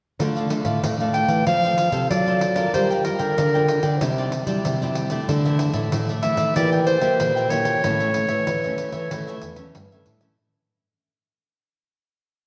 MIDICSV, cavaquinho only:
0, 0, Header, 1, 3, 480
1, 0, Start_track
1, 0, Key_signature, -1, "minor"
1, 0, Tempo, 637620
1, 151, Time_signature, 4, 2, 24, 8
1, 9384, End_track
2, 0, Start_track
2, 0, Title_t, "Cavaquinho"
2, 0, Program_c, 0, 24
2, 145, Note_on_c, 0, 62, 43
2, 150, Note_on_c, 0, 69, 46
2, 156, Note_on_c, 0, 74, 51
2, 161, Note_on_c, 0, 77, 53
2, 258, Note_off_c, 0, 62, 0
2, 259, Note_off_c, 0, 77, 0
2, 261, Note_off_c, 0, 69, 0
2, 264, Note_off_c, 0, 74, 0
2, 268, Note_on_c, 0, 77, 61
2, 276, Note_on_c, 0, 74, 56
2, 284, Note_on_c, 0, 69, 47
2, 369, Note_off_c, 0, 69, 0
2, 370, Note_off_c, 0, 74, 0
2, 373, Note_off_c, 0, 77, 0
2, 487, Note_on_c, 0, 77, 52
2, 494, Note_on_c, 0, 74, 50
2, 502, Note_on_c, 0, 69, 42
2, 609, Note_off_c, 0, 77, 0
2, 612, Note_off_c, 0, 74, 0
2, 616, Note_off_c, 0, 69, 0
2, 623, Note_on_c, 0, 62, 38
2, 630, Note_on_c, 0, 69, 42
2, 635, Note_on_c, 0, 74, 46
2, 640, Note_on_c, 0, 77, 48
2, 736, Note_off_c, 0, 62, 0
2, 740, Note_off_c, 0, 69, 0
2, 742, Note_off_c, 0, 74, 0
2, 745, Note_off_c, 0, 77, 0
2, 752, Note_on_c, 0, 77, 62
2, 760, Note_on_c, 0, 74, 57
2, 767, Note_on_c, 0, 69, 45
2, 954, Note_off_c, 0, 77, 0
2, 964, Note_off_c, 0, 74, 0
2, 964, Note_on_c, 0, 77, 60
2, 971, Note_off_c, 0, 69, 0
2, 973, Note_on_c, 0, 74, 52
2, 980, Note_on_c, 0, 69, 44
2, 1086, Note_off_c, 0, 77, 0
2, 1091, Note_off_c, 0, 74, 0
2, 1094, Note_off_c, 0, 69, 0
2, 1105, Note_on_c, 0, 65, 43
2, 1110, Note_on_c, 0, 69, 45
2, 1117, Note_on_c, 0, 72, 49
2, 1121, Note_on_c, 0, 77, 44
2, 1217, Note_off_c, 0, 65, 0
2, 1219, Note_off_c, 0, 69, 0
2, 1222, Note_off_c, 0, 77, 0
2, 1223, Note_off_c, 0, 72, 0
2, 1231, Note_on_c, 0, 77, 58
2, 1241, Note_on_c, 0, 72, 48
2, 1247, Note_on_c, 0, 69, 49
2, 1330, Note_off_c, 0, 69, 0
2, 1332, Note_off_c, 0, 72, 0
2, 1334, Note_off_c, 0, 77, 0
2, 1440, Note_on_c, 0, 77, 57
2, 1451, Note_on_c, 0, 72, 59
2, 1457, Note_on_c, 0, 69, 50
2, 1683, Note_off_c, 0, 77, 0
2, 1688, Note_off_c, 0, 72, 0
2, 1691, Note_off_c, 0, 69, 0
2, 1704, Note_on_c, 0, 77, 61
2, 1713, Note_on_c, 0, 72, 51
2, 1721, Note_on_c, 0, 69, 51
2, 1912, Note_off_c, 0, 77, 0
2, 1920, Note_off_c, 0, 72, 0
2, 1921, Note_on_c, 0, 77, 50
2, 1927, Note_off_c, 0, 69, 0
2, 1929, Note_on_c, 0, 72, 50
2, 1936, Note_on_c, 0, 69, 47
2, 2043, Note_off_c, 0, 77, 0
2, 2047, Note_off_c, 0, 72, 0
2, 2051, Note_off_c, 0, 69, 0
2, 2061, Note_on_c, 0, 65, 47
2, 2067, Note_on_c, 0, 70, 48
2, 2072, Note_on_c, 0, 74, 51
2, 2078, Note_on_c, 0, 79, 50
2, 2173, Note_off_c, 0, 65, 0
2, 2176, Note_off_c, 0, 70, 0
2, 2176, Note_off_c, 0, 79, 0
2, 2178, Note_off_c, 0, 74, 0
2, 2185, Note_on_c, 0, 79, 60
2, 2194, Note_on_c, 0, 74, 59
2, 2202, Note_on_c, 0, 70, 50
2, 2285, Note_off_c, 0, 70, 0
2, 2287, Note_off_c, 0, 74, 0
2, 2289, Note_off_c, 0, 79, 0
2, 2399, Note_on_c, 0, 79, 61
2, 2407, Note_on_c, 0, 74, 53
2, 2414, Note_on_c, 0, 70, 42
2, 2521, Note_off_c, 0, 79, 0
2, 2525, Note_off_c, 0, 74, 0
2, 2529, Note_off_c, 0, 70, 0
2, 2541, Note_on_c, 0, 65, 42
2, 2547, Note_on_c, 0, 70, 44
2, 2552, Note_on_c, 0, 74, 44
2, 2556, Note_on_c, 0, 79, 42
2, 2652, Note_off_c, 0, 65, 0
2, 2655, Note_off_c, 0, 70, 0
2, 2656, Note_off_c, 0, 79, 0
2, 2658, Note_off_c, 0, 74, 0
2, 2665, Note_on_c, 0, 79, 64
2, 2672, Note_on_c, 0, 74, 52
2, 2680, Note_on_c, 0, 70, 51
2, 2871, Note_off_c, 0, 79, 0
2, 2879, Note_off_c, 0, 74, 0
2, 2880, Note_on_c, 0, 79, 58
2, 2887, Note_off_c, 0, 70, 0
2, 2888, Note_on_c, 0, 74, 54
2, 2896, Note_on_c, 0, 70, 47
2, 3002, Note_off_c, 0, 79, 0
2, 3005, Note_off_c, 0, 74, 0
2, 3010, Note_off_c, 0, 70, 0
2, 3020, Note_on_c, 0, 64, 40
2, 3027, Note_on_c, 0, 67, 45
2, 3031, Note_on_c, 0, 72, 44
2, 3037, Note_on_c, 0, 74, 47
2, 3131, Note_off_c, 0, 64, 0
2, 3135, Note_off_c, 0, 67, 0
2, 3137, Note_off_c, 0, 72, 0
2, 3140, Note_off_c, 0, 74, 0
2, 3148, Note_on_c, 0, 74, 63
2, 3156, Note_on_c, 0, 72, 57
2, 3163, Note_on_c, 0, 67, 56
2, 3246, Note_off_c, 0, 67, 0
2, 3248, Note_off_c, 0, 72, 0
2, 3250, Note_off_c, 0, 74, 0
2, 3360, Note_on_c, 0, 74, 63
2, 3368, Note_on_c, 0, 72, 53
2, 3375, Note_on_c, 0, 67, 49
2, 3601, Note_off_c, 0, 74, 0
2, 3605, Note_off_c, 0, 72, 0
2, 3608, Note_off_c, 0, 67, 0
2, 3626, Note_on_c, 0, 74, 48
2, 3635, Note_on_c, 0, 72, 52
2, 3643, Note_on_c, 0, 67, 54
2, 3830, Note_off_c, 0, 74, 0
2, 3839, Note_off_c, 0, 72, 0
2, 3839, Note_on_c, 0, 74, 60
2, 3846, Note_off_c, 0, 67, 0
2, 3848, Note_on_c, 0, 72, 44
2, 3855, Note_on_c, 0, 67, 49
2, 3960, Note_off_c, 0, 74, 0
2, 3965, Note_off_c, 0, 72, 0
2, 3968, Note_off_c, 0, 67, 0
2, 3981, Note_on_c, 0, 62, 45
2, 3986, Note_on_c, 0, 69, 50
2, 3991, Note_on_c, 0, 74, 52
2, 3995, Note_on_c, 0, 76, 56
2, 4091, Note_off_c, 0, 62, 0
2, 4094, Note_off_c, 0, 69, 0
2, 4095, Note_off_c, 0, 76, 0
2, 4096, Note_off_c, 0, 74, 0
2, 4104, Note_on_c, 0, 76, 71
2, 4113, Note_on_c, 0, 74, 54
2, 4121, Note_on_c, 0, 69, 50
2, 4202, Note_off_c, 0, 69, 0
2, 4205, Note_off_c, 0, 74, 0
2, 4208, Note_off_c, 0, 76, 0
2, 4315, Note_on_c, 0, 76, 66
2, 4325, Note_on_c, 0, 74, 50
2, 4330, Note_on_c, 0, 69, 52
2, 4438, Note_off_c, 0, 76, 0
2, 4443, Note_off_c, 0, 74, 0
2, 4446, Note_off_c, 0, 69, 0
2, 4456, Note_on_c, 0, 62, 36
2, 4462, Note_on_c, 0, 69, 41
2, 4466, Note_on_c, 0, 74, 41
2, 4471, Note_on_c, 0, 76, 49
2, 4568, Note_off_c, 0, 62, 0
2, 4571, Note_off_c, 0, 76, 0
2, 4572, Note_off_c, 0, 69, 0
2, 4573, Note_off_c, 0, 74, 0
2, 4580, Note_on_c, 0, 76, 54
2, 4590, Note_on_c, 0, 74, 52
2, 4597, Note_on_c, 0, 69, 50
2, 4781, Note_off_c, 0, 76, 0
2, 4790, Note_off_c, 0, 74, 0
2, 4790, Note_on_c, 0, 76, 55
2, 4798, Note_off_c, 0, 69, 0
2, 4799, Note_on_c, 0, 74, 61
2, 4808, Note_on_c, 0, 69, 48
2, 4916, Note_off_c, 0, 76, 0
2, 4920, Note_off_c, 0, 74, 0
2, 4924, Note_off_c, 0, 69, 0
2, 4934, Note_on_c, 0, 67, 39
2, 4939, Note_on_c, 0, 70, 42
2, 4945, Note_on_c, 0, 76, 48
2, 4950, Note_on_c, 0, 79, 49
2, 5048, Note_off_c, 0, 67, 0
2, 5049, Note_off_c, 0, 79, 0
2, 5050, Note_off_c, 0, 70, 0
2, 5053, Note_off_c, 0, 76, 0
2, 5058, Note_on_c, 0, 79, 64
2, 5068, Note_on_c, 0, 76, 58
2, 5076, Note_on_c, 0, 70, 47
2, 5159, Note_off_c, 0, 70, 0
2, 5162, Note_off_c, 0, 76, 0
2, 5164, Note_off_c, 0, 79, 0
2, 5273, Note_on_c, 0, 79, 58
2, 5283, Note_on_c, 0, 76, 55
2, 5289, Note_on_c, 0, 70, 49
2, 5518, Note_off_c, 0, 79, 0
2, 5522, Note_off_c, 0, 76, 0
2, 5526, Note_off_c, 0, 70, 0
2, 5539, Note_on_c, 0, 79, 54
2, 5549, Note_on_c, 0, 76, 49
2, 5555, Note_on_c, 0, 70, 47
2, 5747, Note_off_c, 0, 79, 0
2, 5756, Note_on_c, 0, 79, 51
2, 5757, Note_off_c, 0, 76, 0
2, 5763, Note_off_c, 0, 70, 0
2, 5766, Note_on_c, 0, 76, 43
2, 5772, Note_on_c, 0, 70, 42
2, 5879, Note_off_c, 0, 79, 0
2, 5884, Note_off_c, 0, 76, 0
2, 5887, Note_off_c, 0, 70, 0
2, 5893, Note_on_c, 0, 64, 50
2, 5900, Note_on_c, 0, 69, 47
2, 5904, Note_on_c, 0, 73, 45
2, 5909, Note_on_c, 0, 76, 50
2, 6008, Note_off_c, 0, 64, 0
2, 6011, Note_off_c, 0, 69, 0
2, 6013, Note_off_c, 0, 76, 0
2, 6014, Note_off_c, 0, 73, 0
2, 6022, Note_on_c, 0, 76, 68
2, 6030, Note_on_c, 0, 73, 65
2, 6036, Note_on_c, 0, 69, 54
2, 6125, Note_off_c, 0, 69, 0
2, 6128, Note_off_c, 0, 73, 0
2, 6132, Note_off_c, 0, 76, 0
2, 6236, Note_on_c, 0, 76, 56
2, 6246, Note_on_c, 0, 73, 51
2, 6254, Note_on_c, 0, 69, 47
2, 6360, Note_off_c, 0, 76, 0
2, 6365, Note_off_c, 0, 73, 0
2, 6369, Note_off_c, 0, 69, 0
2, 6374, Note_on_c, 0, 64, 44
2, 6381, Note_on_c, 0, 69, 44
2, 6386, Note_on_c, 0, 73, 42
2, 6391, Note_on_c, 0, 76, 41
2, 6489, Note_off_c, 0, 64, 0
2, 6492, Note_off_c, 0, 76, 0
2, 6493, Note_off_c, 0, 69, 0
2, 6495, Note_off_c, 0, 73, 0
2, 6501, Note_on_c, 0, 76, 62
2, 6510, Note_on_c, 0, 73, 59
2, 6517, Note_on_c, 0, 69, 48
2, 6710, Note_off_c, 0, 76, 0
2, 6719, Note_off_c, 0, 73, 0
2, 6719, Note_on_c, 0, 76, 58
2, 6727, Note_off_c, 0, 69, 0
2, 6728, Note_on_c, 0, 73, 56
2, 6736, Note_on_c, 0, 69, 47
2, 6842, Note_off_c, 0, 76, 0
2, 6847, Note_off_c, 0, 73, 0
2, 6851, Note_off_c, 0, 69, 0
2, 6856, Note_on_c, 0, 64, 43
2, 6861, Note_on_c, 0, 69, 41
2, 6867, Note_on_c, 0, 73, 44
2, 6870, Note_on_c, 0, 76, 47
2, 6971, Note_off_c, 0, 64, 0
2, 6972, Note_off_c, 0, 76, 0
2, 6974, Note_off_c, 0, 69, 0
2, 6976, Note_off_c, 0, 73, 0
2, 6981, Note_on_c, 0, 76, 65
2, 6990, Note_on_c, 0, 73, 61
2, 6998, Note_on_c, 0, 69, 50
2, 7081, Note_off_c, 0, 69, 0
2, 7084, Note_off_c, 0, 73, 0
2, 7085, Note_off_c, 0, 76, 0
2, 7197, Note_on_c, 0, 76, 60
2, 7208, Note_on_c, 0, 73, 58
2, 7215, Note_on_c, 0, 69, 50
2, 7443, Note_off_c, 0, 76, 0
2, 7448, Note_off_c, 0, 73, 0
2, 7452, Note_off_c, 0, 69, 0
2, 7467, Note_on_c, 0, 76, 64
2, 7476, Note_on_c, 0, 73, 50
2, 7485, Note_on_c, 0, 69, 50
2, 7673, Note_off_c, 0, 76, 0
2, 7681, Note_off_c, 0, 73, 0
2, 7682, Note_on_c, 0, 76, 58
2, 7688, Note_off_c, 0, 69, 0
2, 7690, Note_on_c, 0, 73, 42
2, 7697, Note_on_c, 0, 69, 50
2, 7806, Note_off_c, 0, 76, 0
2, 7809, Note_off_c, 0, 73, 0
2, 7813, Note_off_c, 0, 69, 0
2, 9384, End_track
3, 0, Start_track
3, 0, Title_t, "Muted cavaquinho strokes"
3, 375, Note_on_c, 9, 29, 33
3, 450, Note_off_c, 9, 29, 0
3, 1334, Note_on_c, 9, 29, 34
3, 1409, Note_off_c, 9, 29, 0
3, 2290, Note_on_c, 9, 29, 31
3, 2365, Note_off_c, 9, 29, 0
3, 3253, Note_on_c, 9, 29, 35
3, 3328, Note_off_c, 9, 29, 0
3, 4209, Note_on_c, 9, 29, 37
3, 4284, Note_off_c, 9, 29, 0
3, 5166, Note_on_c, 9, 29, 37
3, 5242, Note_off_c, 9, 29, 0
3, 6130, Note_on_c, 9, 29, 35
3, 6205, Note_off_c, 9, 29, 0
3, 7088, Note_on_c, 9, 29, 29
3, 7163, Note_off_c, 9, 29, 0
3, 9384, End_track
0, 0, End_of_file